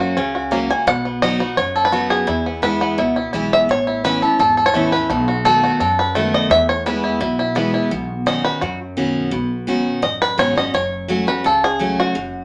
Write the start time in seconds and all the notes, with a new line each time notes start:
Already playing: F#2 F#3 A#3 C#4 F#4
0.00 F#4
0.17 C#2 C#3 C#4
0.35 F#4
0.51 F#3 A#3 C#4 F#4
0.70 C#4 F#4 G#5
0.87 B1 B2 F#5
1.05 B3
1.22 F#3 B3 D#4 F#4 D#5
1.40 B3 D#4 F#4
1.57 F#1 F#2 C#5
1.76 A4
1.85 B4
1.92 F#3 B3 D#4 F#4
2.10 G#4
2.27 E2 E4
2.46 B3
2.62 E3 G#3 B3 E4 B4
2.81 B3
2.98 C#2 B2 E4
3.16 E4
3.33 B1 E3 G#3 B3 E4
3.53 E5
3.69 A1 A2 C#5
3.87 E4
4.04 E3 B3 C#4 E4 B4
4.22 C#4 E4 A4
4.39 G#1 E2 A4
4.57 A4
4.66 C#5
4.74 A1 E3 A3 B3 C#4 E4
4.92 C#4 E4 B4
5.10 B1 B2 A3
5.28 F#4
5.45 D#3 A3 B3 F#4 A4
5.63 F#4
5.80 F#2 A4
5.99 B4
6.15 D#3 A3 B3 F#4
6.34 D#5
6.50 E2 E5
6.69 C#5
6.86 E3 G#3 B3 E4 B4
7.04 E4
7.20 B1 B2 E4
7.39 E4
7.55 E3 G#3 B3 E4
7.74 E4
7.91 B1 B2
8.26 B2 D#3 C#4 F#4 D#5
8.44 B4
8.61 F#2 F#4
8.97 B2 D#3 C#4 F#4
9.31 B1 B2
9.67 B2 D#3 C#4 F#4
10.02 A1 F#2 D#5
10.22 B4
10.37 G#1 B2 D#3 C#4 F#4 C#5
10.55 C#4 F#4 D#5
10.74 F#1 F#2 C#5
11.08 F#3 A3 C#4 F#4
11.27 C#4 F#4 B4
11.44 C#2 C#3 A4
11.64 G#4
11.79 F#3 A3 C#4 F#4
12.00 F#4
12.15 F#1 F#2